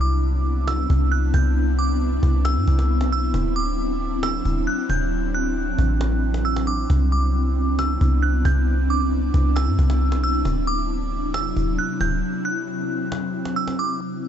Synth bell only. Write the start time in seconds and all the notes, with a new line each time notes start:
0.01 D6
0.68 E6
1.12 F#6
1.34 G6
1.79 D6
2.45 E6
3.12 E6
3.56 D6
4.23 E6
4.67 F#6
4.90 G6
5.34 F#6
6.45 E6
6.67 D6
7.12 D6
7.79 E6
8.22 F#6
8.45 G6
8.90 D6
9.56 E6
10.24 E6
10.67 D6
11.34 E6
11.79 F#6
12.01 G6
12.45 F#6
13.56 E6
13.79 D6
14.24 D6